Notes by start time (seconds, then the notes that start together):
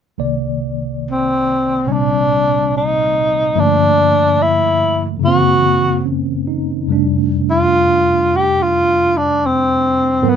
0.18 C2 C3 D#3 A#3 D5
1.11 C4
1.87 A#2 C3 G3 C4 C#4
1.93 D4
2.77 D#4
3.55 G2 D3 F3 A3 A#3
3.59 D4
4.42 E4
5.17 F#2 C#3
5.22 E3 A#3 F#4
5.27 C4
6.05 C#4
6.48 D#4
6.87 F2 C3 G3 A3
6.92 D4
7.50 F4
8.36 G4
8.63 F4
9.17 D4
9.46 C4
10.22 G#2 D#3 F#3 B3 A#4
10.29 B3